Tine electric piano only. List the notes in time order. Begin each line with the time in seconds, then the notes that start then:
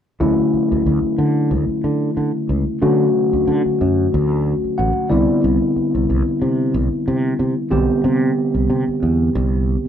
0.20 D3 F#3 A3 C#4 E4
2.82 D3 F#3 A3 C#4 F#4
4.78 F#5
5.10 D3 G3 B3 C4 E4 D5
7.71 D3 G3 B3 C4 G4